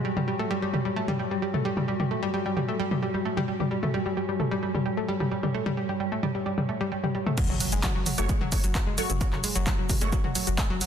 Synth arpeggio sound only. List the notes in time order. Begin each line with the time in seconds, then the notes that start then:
0.05 G3
0.17 G3
0.28 G3
0.39 A3
0.51 G3
0.62 G3
0.73 G3
0.85 G3
0.96 A3
1.08 G3
1.19 G3
1.31 G3
1.42 G3
1.54 A3
1.65 G3
1.77 G3
1.88 G3
2.00 G3
2.11 A3
2.23 G3
2.34 G3
2.46 G3
2.57 G3
2.68 A3
2.80 G3
2.91 G3
3.02 G3
3.14 G3
3.25 A3
3.37 G3
3.48 G3
3.60 G3
3.71 G3
3.83 A3
3.94 G3
4.06 G3
4.17 G3
4.29 G3
4.40 A3
4.51 G3
4.63 G3
4.74 G3
4.86 G3
4.97 A3
5.09 G3
5.20 G3
5.31 G3
5.43 G3
5.54 A3
5.66 G3
5.77 G3
5.89 G3
6.00 G3
6.12 A3
6.23 G3
6.35 G3
6.46 G3
6.58 G3
6.69 A3
6.81 G3
6.92 G3
7.04 G3
7.15 G3
7.27 A3
7.38 F#3
7.50 F#3
7.61 F#3
7.72 G#3
7.83 F#3
7.95 F#3
8.06 F#3
8.18 F#3
8.29 G#3
8.41 F#3
8.52 F#3
8.64 F#3
8.75 F#3
8.87 G#3
8.98 F#3
9.10 F#3
9.21 F#3
9.33 F#3
9.44 G#3
9.55 F#3
9.67 F#3
9.78 F#3
9.89 F#3
10.01 G#3
10.12 F#3
10.24 F#3
10.35 F#3
10.47 F#3
10.58 G#3
10.70 F#3
10.81 F#3